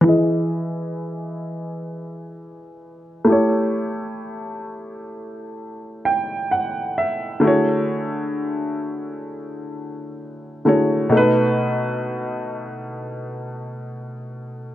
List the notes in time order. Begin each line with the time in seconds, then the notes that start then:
0.01 E3 E4
0.06 G#4 D#5
3.25 A3 E4
3.29 G4 C#5
6.05 G5
6.51 F#5
6.98 E5
7.40 D3 A3 E4
7.44 F#4 G#4 C#5
10.65 D3 A3 E4 F#4 G#4 C#5
11.09 B2 A3
11.15 D#4 B4